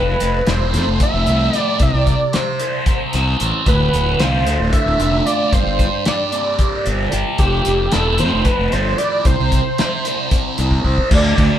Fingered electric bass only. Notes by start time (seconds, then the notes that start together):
Already playing: F1
0.21 F1
0.47 E1
0.74 F2
0.87 F1
1.14 F1
1.27 C2
1.80 C2
1.94 C2
3.14 C2
3.41 A1
3.67 D1
3.93 D1
4.20 C2
4.46 D2
4.60 D1
4.86 D1
5.00 F1
5.53 G1
5.66 G1
6.87 G1
7.13 G1
7.39 F1
7.66 F1
7.93 E1
8.19 F2
8.33 F1
8.59 F1
8.73 G1
9.25 C2
9.40 C2
10.59 C2
10.85 C2
11.11 D2
11.38 D2